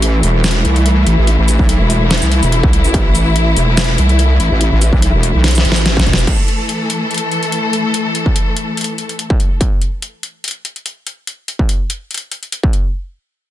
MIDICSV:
0, 0, Header, 1, 4, 480
1, 0, Start_track
1, 0, Key_signature, 0, "minor"
1, 0, Tempo, 416667
1, 1468, Time_signature, 4, 2, 24, 8
1, 15554, End_track
2, 0, Start_track
2, 0, Title_t, "String section"
2, 0, Program_c, 0, 48
2, 0, Note_on_c, 0, 52, 86
2, 0, Note_on_c, 0, 57, 77
2, 0, Note_on_c, 0, 64, 96
2, 7181, Note_off_c, 0, 52, 0
2, 7182, Note_off_c, 0, 57, 0
2, 7207, Note_off_c, 0, 64, 0
2, 7227, Note_on_c, 0, 52, 80
2, 7227, Note_on_c, 0, 57, 72
2, 7227, Note_on_c, 0, 69, 90
2, 11029, Note_off_c, 0, 52, 0
2, 11029, Note_off_c, 0, 57, 0
2, 11029, Note_off_c, 0, 69, 0
2, 15554, End_track
3, 0, Start_track
3, 0, Title_t, "Wobble bass"
3, 0, Program_c, 1, 39
3, 0, Note_on_c, 1, 33, 95
3, 249, Note_off_c, 1, 33, 0
3, 267, Note_on_c, 1, 28, 98
3, 729, Note_off_c, 1, 28, 0
3, 747, Note_on_c, 1, 36, 95
3, 1209, Note_off_c, 1, 36, 0
3, 1228, Note_on_c, 1, 33, 99
3, 1335, Note_off_c, 1, 33, 0
3, 1355, Note_on_c, 1, 33, 96
3, 1575, Note_off_c, 1, 33, 0
3, 1595, Note_on_c, 1, 33, 98
3, 1815, Note_off_c, 1, 33, 0
3, 1835, Note_on_c, 1, 35, 98
3, 2055, Note_off_c, 1, 35, 0
3, 2075, Note_on_c, 1, 28, 100
3, 2535, Note_off_c, 1, 28, 0
3, 2555, Note_on_c, 1, 36, 100
3, 2775, Note_off_c, 1, 36, 0
3, 2795, Note_on_c, 1, 28, 99
3, 3015, Note_off_c, 1, 28, 0
3, 3035, Note_on_c, 1, 36, 98
3, 3255, Note_off_c, 1, 36, 0
3, 3275, Note_on_c, 1, 33, 97
3, 3369, Note_off_c, 1, 33, 0
3, 3387, Note_on_c, 1, 33, 100
3, 4089, Note_off_c, 1, 33, 0
3, 4107, Note_on_c, 1, 28, 100
3, 4569, Note_off_c, 1, 28, 0
3, 4587, Note_on_c, 1, 36, 97
3, 5049, Note_off_c, 1, 36, 0
3, 5067, Note_on_c, 1, 33, 98
3, 5175, Note_off_c, 1, 33, 0
3, 5195, Note_on_c, 1, 33, 98
3, 5415, Note_off_c, 1, 33, 0
3, 5435, Note_on_c, 1, 33, 102
3, 5655, Note_off_c, 1, 33, 0
3, 5675, Note_on_c, 1, 35, 100
3, 5895, Note_off_c, 1, 35, 0
3, 5915, Note_on_c, 1, 28, 97
3, 6135, Note_off_c, 1, 28, 0
3, 6155, Note_on_c, 1, 35, 96
3, 6489, Note_off_c, 1, 35, 0
3, 6506, Note_on_c, 1, 33, 94
3, 6969, Note_off_c, 1, 33, 0
3, 6987, Note_on_c, 1, 28, 101
3, 7209, Note_off_c, 1, 28, 0
3, 15554, End_track
4, 0, Start_track
4, 0, Title_t, "Drums"
4, 28, Note_on_c, 9, 42, 80
4, 143, Note_off_c, 9, 42, 0
4, 267, Note_on_c, 9, 46, 92
4, 383, Note_off_c, 9, 46, 0
4, 508, Note_on_c, 9, 38, 120
4, 508, Note_on_c, 9, 42, 48
4, 508, Note_on_c, 9, 82, 81
4, 550, Note_off_c, 9, 42, 0
4, 550, Note_on_c, 9, 42, 63
4, 588, Note_off_c, 9, 42, 0
4, 588, Note_on_c, 9, 42, 79
4, 623, Note_off_c, 9, 38, 0
4, 623, Note_off_c, 9, 82, 0
4, 703, Note_off_c, 9, 42, 0
4, 747, Note_on_c, 9, 42, 51
4, 863, Note_off_c, 9, 42, 0
4, 876, Note_on_c, 9, 42, 35
4, 987, Note_off_c, 9, 42, 0
4, 987, Note_on_c, 9, 42, 78
4, 1103, Note_off_c, 9, 42, 0
4, 1227, Note_on_c, 9, 42, 52
4, 1342, Note_off_c, 9, 42, 0
4, 1468, Note_on_c, 9, 42, 77
4, 1583, Note_off_c, 9, 42, 0
4, 1707, Note_on_c, 9, 42, 50
4, 1707, Note_on_c, 9, 82, 83
4, 1822, Note_off_c, 9, 42, 0
4, 1822, Note_off_c, 9, 82, 0
4, 1835, Note_on_c, 9, 36, 61
4, 1947, Note_on_c, 9, 42, 80
4, 1950, Note_off_c, 9, 36, 0
4, 2062, Note_off_c, 9, 42, 0
4, 2187, Note_on_c, 9, 46, 93
4, 2302, Note_off_c, 9, 46, 0
4, 2427, Note_on_c, 9, 38, 118
4, 2427, Note_on_c, 9, 42, 46
4, 2470, Note_off_c, 9, 42, 0
4, 2470, Note_on_c, 9, 42, 65
4, 2507, Note_off_c, 9, 42, 0
4, 2507, Note_on_c, 9, 42, 80
4, 2542, Note_off_c, 9, 38, 0
4, 2555, Note_on_c, 9, 82, 87
4, 2622, Note_off_c, 9, 42, 0
4, 2667, Note_on_c, 9, 42, 50
4, 2671, Note_off_c, 9, 82, 0
4, 2782, Note_off_c, 9, 42, 0
4, 2796, Note_on_c, 9, 42, 36
4, 2796, Note_on_c, 9, 82, 54
4, 2908, Note_off_c, 9, 42, 0
4, 2908, Note_on_c, 9, 42, 79
4, 2911, Note_off_c, 9, 82, 0
4, 3023, Note_off_c, 9, 42, 0
4, 3035, Note_on_c, 9, 36, 105
4, 3147, Note_on_c, 9, 42, 54
4, 3150, Note_off_c, 9, 36, 0
4, 3263, Note_off_c, 9, 42, 0
4, 3276, Note_on_c, 9, 82, 57
4, 3387, Note_on_c, 9, 36, 115
4, 3387, Note_on_c, 9, 42, 78
4, 3391, Note_off_c, 9, 82, 0
4, 3502, Note_off_c, 9, 36, 0
4, 3503, Note_off_c, 9, 42, 0
4, 3628, Note_on_c, 9, 42, 52
4, 3628, Note_on_c, 9, 82, 85
4, 3743, Note_off_c, 9, 42, 0
4, 3743, Note_off_c, 9, 82, 0
4, 3868, Note_on_c, 9, 42, 81
4, 3983, Note_off_c, 9, 42, 0
4, 4107, Note_on_c, 9, 46, 97
4, 4223, Note_off_c, 9, 46, 0
4, 4347, Note_on_c, 9, 38, 120
4, 4347, Note_on_c, 9, 42, 50
4, 4347, Note_on_c, 9, 82, 85
4, 4390, Note_off_c, 9, 42, 0
4, 4390, Note_on_c, 9, 42, 64
4, 4427, Note_off_c, 9, 42, 0
4, 4427, Note_on_c, 9, 42, 79
4, 4462, Note_off_c, 9, 38, 0
4, 4462, Note_off_c, 9, 82, 0
4, 4542, Note_off_c, 9, 42, 0
4, 4587, Note_on_c, 9, 42, 52
4, 4702, Note_off_c, 9, 42, 0
4, 4715, Note_on_c, 9, 42, 36
4, 4827, Note_off_c, 9, 42, 0
4, 4827, Note_on_c, 9, 42, 83
4, 4943, Note_off_c, 9, 42, 0
4, 5068, Note_on_c, 9, 42, 55
4, 5183, Note_off_c, 9, 42, 0
4, 5307, Note_on_c, 9, 42, 85
4, 5423, Note_off_c, 9, 42, 0
4, 5547, Note_on_c, 9, 42, 54
4, 5547, Note_on_c, 9, 82, 85
4, 5663, Note_off_c, 9, 42, 0
4, 5663, Note_off_c, 9, 82, 0
4, 5675, Note_on_c, 9, 36, 62
4, 5787, Note_on_c, 9, 42, 85
4, 5790, Note_off_c, 9, 36, 0
4, 5903, Note_off_c, 9, 42, 0
4, 6027, Note_on_c, 9, 46, 99
4, 6143, Note_off_c, 9, 46, 0
4, 6267, Note_on_c, 9, 38, 69
4, 6267, Note_on_c, 9, 42, 52
4, 6310, Note_off_c, 9, 42, 0
4, 6310, Note_on_c, 9, 42, 69
4, 6347, Note_off_c, 9, 42, 0
4, 6347, Note_on_c, 9, 42, 85
4, 6382, Note_off_c, 9, 38, 0
4, 6395, Note_on_c, 9, 82, 83
4, 6427, Note_on_c, 9, 38, 79
4, 6462, Note_off_c, 9, 42, 0
4, 6507, Note_on_c, 9, 42, 53
4, 6510, Note_off_c, 9, 82, 0
4, 6542, Note_off_c, 9, 38, 0
4, 6587, Note_on_c, 9, 38, 80
4, 6622, Note_off_c, 9, 42, 0
4, 6635, Note_on_c, 9, 42, 37
4, 6635, Note_on_c, 9, 82, 57
4, 6702, Note_off_c, 9, 38, 0
4, 6747, Note_off_c, 9, 42, 0
4, 6747, Note_on_c, 9, 38, 93
4, 6747, Note_on_c, 9, 42, 82
4, 6750, Note_off_c, 9, 82, 0
4, 6862, Note_off_c, 9, 38, 0
4, 6862, Note_off_c, 9, 42, 0
4, 6875, Note_on_c, 9, 36, 106
4, 6906, Note_on_c, 9, 38, 100
4, 6987, Note_off_c, 9, 36, 0
4, 6987, Note_on_c, 9, 36, 60
4, 6987, Note_on_c, 9, 42, 56
4, 7022, Note_off_c, 9, 38, 0
4, 7067, Note_on_c, 9, 38, 108
4, 7102, Note_off_c, 9, 36, 0
4, 7102, Note_off_c, 9, 42, 0
4, 7115, Note_on_c, 9, 82, 55
4, 7182, Note_off_c, 9, 38, 0
4, 7227, Note_on_c, 9, 36, 114
4, 7227, Note_on_c, 9, 42, 80
4, 7227, Note_on_c, 9, 49, 86
4, 7230, Note_off_c, 9, 82, 0
4, 7342, Note_off_c, 9, 36, 0
4, 7342, Note_off_c, 9, 42, 0
4, 7342, Note_off_c, 9, 49, 0
4, 7467, Note_on_c, 9, 42, 54
4, 7582, Note_off_c, 9, 42, 0
4, 7707, Note_on_c, 9, 42, 80
4, 7822, Note_off_c, 9, 42, 0
4, 7947, Note_on_c, 9, 42, 80
4, 8062, Note_off_c, 9, 42, 0
4, 8188, Note_on_c, 9, 42, 49
4, 8230, Note_off_c, 9, 42, 0
4, 8230, Note_on_c, 9, 42, 64
4, 8267, Note_off_c, 9, 42, 0
4, 8267, Note_on_c, 9, 42, 79
4, 8382, Note_off_c, 9, 42, 0
4, 8427, Note_on_c, 9, 42, 51
4, 8542, Note_off_c, 9, 42, 0
4, 8555, Note_on_c, 9, 42, 37
4, 8667, Note_off_c, 9, 42, 0
4, 8667, Note_on_c, 9, 42, 81
4, 8782, Note_off_c, 9, 42, 0
4, 8907, Note_on_c, 9, 42, 53
4, 9022, Note_off_c, 9, 42, 0
4, 9147, Note_on_c, 9, 42, 80
4, 9262, Note_off_c, 9, 42, 0
4, 9387, Note_on_c, 9, 42, 52
4, 9502, Note_off_c, 9, 42, 0
4, 9516, Note_on_c, 9, 36, 60
4, 9628, Note_on_c, 9, 42, 79
4, 9631, Note_off_c, 9, 36, 0
4, 9743, Note_off_c, 9, 42, 0
4, 9868, Note_on_c, 9, 42, 78
4, 9983, Note_off_c, 9, 42, 0
4, 10107, Note_on_c, 9, 42, 49
4, 10150, Note_off_c, 9, 42, 0
4, 10150, Note_on_c, 9, 42, 66
4, 10187, Note_off_c, 9, 42, 0
4, 10187, Note_on_c, 9, 42, 80
4, 10302, Note_off_c, 9, 42, 0
4, 10348, Note_on_c, 9, 42, 52
4, 10463, Note_off_c, 9, 42, 0
4, 10475, Note_on_c, 9, 42, 35
4, 10587, Note_off_c, 9, 42, 0
4, 10587, Note_on_c, 9, 42, 77
4, 10703, Note_off_c, 9, 42, 0
4, 10716, Note_on_c, 9, 36, 103
4, 10828, Note_on_c, 9, 42, 53
4, 10831, Note_off_c, 9, 36, 0
4, 10943, Note_off_c, 9, 42, 0
4, 11067, Note_on_c, 9, 36, 123
4, 11067, Note_on_c, 9, 42, 78
4, 11183, Note_off_c, 9, 36, 0
4, 11183, Note_off_c, 9, 42, 0
4, 11308, Note_on_c, 9, 42, 51
4, 11423, Note_off_c, 9, 42, 0
4, 11548, Note_on_c, 9, 42, 77
4, 11663, Note_off_c, 9, 42, 0
4, 11787, Note_on_c, 9, 42, 75
4, 11903, Note_off_c, 9, 42, 0
4, 12028, Note_on_c, 9, 42, 49
4, 12070, Note_off_c, 9, 42, 0
4, 12070, Note_on_c, 9, 42, 65
4, 12108, Note_off_c, 9, 42, 0
4, 12108, Note_on_c, 9, 42, 77
4, 12223, Note_off_c, 9, 42, 0
4, 12268, Note_on_c, 9, 42, 49
4, 12383, Note_off_c, 9, 42, 0
4, 12396, Note_on_c, 9, 42, 36
4, 12507, Note_off_c, 9, 42, 0
4, 12507, Note_on_c, 9, 42, 78
4, 12623, Note_off_c, 9, 42, 0
4, 12748, Note_on_c, 9, 42, 52
4, 12863, Note_off_c, 9, 42, 0
4, 12988, Note_on_c, 9, 42, 74
4, 13103, Note_off_c, 9, 42, 0
4, 13227, Note_on_c, 9, 42, 48
4, 13342, Note_off_c, 9, 42, 0
4, 13355, Note_on_c, 9, 36, 61
4, 13467, Note_on_c, 9, 42, 76
4, 13471, Note_off_c, 9, 36, 0
4, 13583, Note_off_c, 9, 42, 0
4, 13707, Note_on_c, 9, 42, 73
4, 13822, Note_off_c, 9, 42, 0
4, 13947, Note_on_c, 9, 42, 44
4, 13990, Note_off_c, 9, 42, 0
4, 13990, Note_on_c, 9, 42, 62
4, 14027, Note_off_c, 9, 42, 0
4, 14027, Note_on_c, 9, 42, 75
4, 14142, Note_off_c, 9, 42, 0
4, 14187, Note_on_c, 9, 42, 48
4, 14302, Note_off_c, 9, 42, 0
4, 14315, Note_on_c, 9, 42, 34
4, 14427, Note_off_c, 9, 42, 0
4, 14427, Note_on_c, 9, 42, 73
4, 14543, Note_off_c, 9, 42, 0
4, 14555, Note_on_c, 9, 36, 105
4, 14667, Note_on_c, 9, 42, 51
4, 14670, Note_off_c, 9, 36, 0
4, 14782, Note_off_c, 9, 42, 0
4, 15554, End_track
0, 0, End_of_file